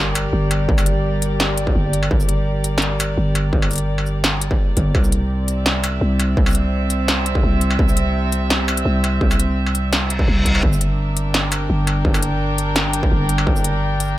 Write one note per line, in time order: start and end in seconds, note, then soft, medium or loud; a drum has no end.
0.00 0.32 G1 loud
0.00 4.95 G3 medium
0.00 5.96 G4 medium
0.00 6.29 A#4 medium
0.00 11.87 D5 medium
0.00 sub drop medium
0.15 closed hi-hat medium
0.15 struck metal medium
0.15 shaker medium
0.33 0.67 G1 loud
0.51 closed hi-hat medium
0.51 struck metal medium
0.68 1.74 G1 loud
0.68 kick loud
0.78 struck metal medium
0.78 shaker medium
0.86 closed hi-hat medium
1.22 closed hi-hat medium
1.22 shaker soft
1.40 snare loud
1.40 closed hi-hat soft
1.58 closed hi-hat medium
1.67 kick loud
1.75 2.10 G1 loud
1.93 closed hi-hat medium
2.03 struck metal medium
2.11 3.16 G1 loud
2.11 kick loud
2.20 shaker medium
2.29 closed hi-hat medium
2.64 closed hi-hat medium
2.64 shaker soft
2.78 snare loud
2.82 closed hi-hat soft
3.00 closed hi-hat medium
3.00 struck metal medium
3.00 shaker medium
3.18 3.52 G1 loud
3.35 closed hi-hat medium
3.35 struck metal soft
3.53 4.58 G1 loud
3.53 kick loud
3.62 struck metal medium
3.71 closed hi-hat soft
3.71 shaker medium
3.73 closed hi-hat soft
3.76 closed hi-hat medium
3.78 closed hi-hat medium
3.98 struck metal soft
4.06 shaker soft
4.24 snare loud
4.24 closed hi-hat soft
4.41 closed hi-hat medium
4.51 kick loud
4.77 4.94 G1 loud
4.77 kick medium
4.77 closed hi-hat medium
4.95 6.00 C2 loud
4.95 10.63 C3 medium
4.95 kick loud
4.95 struck metal medium
5.04 shaker medium
5.12 closed hi-hat medium
5.22 11.68 C4 medium
5.48 11.81 E5 medium
5.48 closed hi-hat medium
5.48 shaker soft
5.66 snare loud
5.66 closed hi-hat soft
5.84 closed hi-hat medium
5.84 struck metal medium
5.84 shaker medium
6.01 6.36 C2 loud
6.20 closed hi-hat medium
6.20 struck metal medium
6.37 7.42 C2 loud
6.37 kick loud
6.46 struck metal medium
6.46 shaker soft
6.48 shaker soft
6.51 shaker soft
6.53 closed hi-hat medium
6.53 shaker medium
6.90 closed hi-hat medium
6.90 shaker soft
7.08 snare loud
7.08 closed hi-hat soft
7.26 closed hi-hat medium
7.35 kick loud
7.43 7.78 C2 loud
7.61 closed hi-hat medium
7.71 struck metal medium
7.79 8.84 C2 loud
7.79 kick loud
7.89 shaker medium
7.97 closed hi-hat medium
8.32 closed hi-hat medium
8.32 shaker soft
8.50 snare loud
8.50 closed hi-hat soft
8.68 struck metal medium
8.68 shaker medium
8.77 closed hi-hat medium
8.85 9.20 C2 loud
9.04 closed hi-hat medium
9.04 struck metal medium
9.21 10.26 C2 loud
9.21 kick loud
9.31 struck metal medium
9.31 shaker medium
9.40 closed hi-hat medium
9.66 struck metal soft
9.75 closed hi-hat medium
9.75 shaker soft
9.92 snare loud
9.92 closed hi-hat soft
9.92 reverse cymbal medium
10.10 closed hi-hat medium
10.19 kick loud
10.28 10.62 C2 loud
10.45 kick medium
10.45 closed hi-hat medium
10.55 struck metal medium
10.63 11.68 G1 loud
10.63 14.18 G3 medium
10.63 kick loud
10.73 shaker medium
10.81 closed hi-hat medium
10.86 14.18 D4 medium
10.86 14.18 A#4 medium
11.17 closed hi-hat medium
11.17 shaker soft
11.28 14.18 G5 medium
11.34 snare loud
11.34 closed hi-hat soft
11.52 closed hi-hat medium
11.52 struck metal medium
11.52 shaker medium
11.70 12.04 G1 loud
11.87 closed hi-hat medium
11.87 struck metal medium
12.05 13.10 G1 medium
12.05 kick loud
12.14 struck metal medium
12.14 shaker medium
12.22 closed hi-hat medium
12.58 closed hi-hat medium
12.58 shaker soft
12.76 snare loud
12.76 closed hi-hat soft
12.93 closed hi-hat medium
13.03 kick loud
13.12 13.46 G1 loud
13.29 closed hi-hat medium
13.38 struck metal medium
13.47 14.18 G1 loud
13.47 kick loud
13.56 shaker medium
13.64 closed hi-hat medium
14.00 closed hi-hat medium
14.00 shaker soft
14.02 shaker soft
14.05 shaker soft
14.07 shaker soft